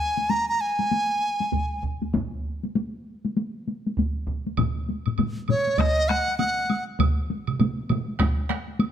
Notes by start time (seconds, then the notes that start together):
Already playing: G#5
0.17 taiko high
0.30 A#5, taiko high
0.49 A#5
0.61 G#5
0.79 taiko high
0.91 taiko high
1.40 taiko high
1.52 taiko, taiko high
1.83 taiko
2.02 taiko high
2.14 taiko, taiko high
2.63 taiko high
2.75 taiko high
3.25 taiko high
3.37 taiko high
3.68 taiko high
3.87 taiko high
3.97 taiko, taiko high
4.27 taiko
4.47 taiko high
4.57 taiko, taiko low-mid, taiko high, high woodblock
4.77 taiko high
4.89 taiko high
5.06 taiko low-mid, taiko high, high woodblock
5.18 taiko low-mid, taiko high, high woodblock
5.37 taiko high
5.48 C#5, taiko low-mid, taiko high, high woodblock
5.67 taiko high
5.78 D#5, taiko rim, taiko, taiko high, high woodblock
5.98 taiko high
6.08 F#5, taiko rim, taiko high
6.28 taiko high
6.38 F#5, taiko high, high woodblock
6.70 taiko high, high woodblock
6.99 taiko, taiko mid, taiko high, high woodblock
7.18 taiko high
7.30 taiko high
7.47 taiko mid, taiko high, high woodblock
7.59 taiko mid, taiko high, high woodblock
7.78 taiko high
7.89 taiko mid, taiko high, high woodblock
8.08 taiko high
8.19 taiko rim, taiko, taiko high, high woodblock
8.38 taiko high
8.50 taiko rim, taiko high
8.68 taiko high
8.79 taiko high, high woodblock